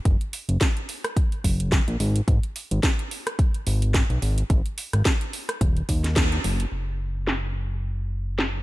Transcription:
0.05 analog synth bass F#1, kick, closed hi-hat
0.21 closed hi-hat
0.33 open hi-hat
0.49 analog synth bass F#1, closed hi-hat
0.61 kick, snare, closed hi-hat
0.77 closed hi-hat
0.89 open hi-hat
1.04 cross-stick, closed hi-hat
1.17 kick, closed hi-hat
1.32 closed hi-hat
1.44 analog synth bass F#1, kick, open hi-hat
1.60 closed hi-hat
1.72 kick, snare, closed hi-hat
1.88 analog synth bass A#1, closed hi-hat
2.00 analog synth bass G#1, open hi-hat
2.16 closed hi-hat
2.28 analog synth bass G#1, kick, closed hi-hat
2.43 closed hi-hat
2.56 open hi-hat
2.71 analog synth bass G#1, closed hi-hat
2.83 kick, snare, closed hi-hat
2.99 closed hi-hat
3.11 open hi-hat
3.27 cross-stick, closed hi-hat
3.39 kick, closed hi-hat
3.54 closed hi-hat
3.67 analog synth bass G#1, open hi-hat
3.82 closed hi-hat
3.94 kick, snare, closed hi-hat
4.10 analog synth bass B1, closed hi-hat
4.22 analog synth bass G#1, open hi-hat
4.38 closed hi-hat
4.50 analog synth bass G#1, kick, closed hi-hat
4.66 closed hi-hat
4.78 open hi-hat
4.93 analog synth bass G#1, cross-stick, closed hi-hat
5.05 kick, snare, closed hi-hat
5.21 closed hi-hat
5.33 open hi-hat
5.49 cross-stick, closed hi-hat
5.61 analog synth bass D#1, kick, closed hi-hat
5.77 closed hi-hat
5.89 analog synth bass D#2, kick, open hi-hat
6.04 snare, closed hi-hat
6.16 kick, snare, closed hi-hat
6.32 closed hi-hat
6.44 analog synth bass F#1, open hi-hat
6.60 closed hi-hat
6.72 analog synth bass F#1
7.27 snare
8.39 snare

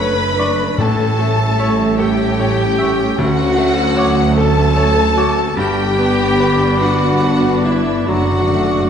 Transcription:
Already playing: double bass section F#1, cello section F#2, grand piano F#2 A3 A4, french horn section A3 D4, viola section A3 D4, violin section B4 B5, clarinet B4
0.00 grand piano C#5
0.39 grand piano D4, cor anglais D5, flute C#6
0.77 double bass section A1, timpani A2, cello section A2, grand piano A2, french horn section G3 C#4, viola section C#4, clarinet A4, violin section A4 A5
1.19 grand piano A3
1.58 grand piano C#5, cor anglais E5, flute C#6
1.98 clarinet G4, violin section G4 G5, grand piano A4
2.39 grand piano C#5
2.79 grand piano G4, cor anglais E5, flute C#6
3.18 grand piano D2, cello section D2, double bass section D2, timpani D3, french horn section F#3, viola section A3, clarinet F#4, violin section F#4 F#5
3.58 grand piano A3
3.96 cor anglais C#5, grand piano C#5, flute D6
4.36 clarinet A4, violin section A4 A5, grand piano A4
4.76 grand piano C#5
5.17 grand piano F#4, cor anglais C#5, flute D6
5.56 double bass section G1, grand piano G2, cello section G2, french horn section D3 B3, viola section B3 D4, clarinet G4, violin section G4 G5, cor anglais B4, flute D6
5.99 grand piano B3
6.40 grand piano B4
6.79 grand piano D4, clarinet F#4, violin section F#4 F#5
7.24 grand piano B4
7.64 grand piano D4, clarinet E4, violin section E4 E5
8.07 double bass section F#1, cello section F#2, timpani D3, french horn section D3 D4, grand piano F#3, viola section A3, clarinet F#4, violin section F#4 F#5, cor anglais D5, flute C#6
8.16 timpani D3
8.24 timpani D3
8.32 timpani D3
8.41 timpani D3
8.49 timpani D3
8.54 timpani D3, grand piano A3
8.66 timpani D3
8.74 timpani D3
8.82 timpani D3

